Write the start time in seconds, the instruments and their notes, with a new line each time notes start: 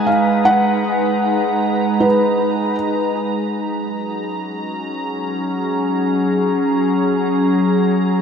Already playing: ambient pad G#3 D#4 B4 A#5
0.06 felt piano F5
0.45 felt piano F#5
2.00 felt piano B4
3.56 ambient pad F#3
3.79 ambient pad C#4
4.14 ambient pad G#4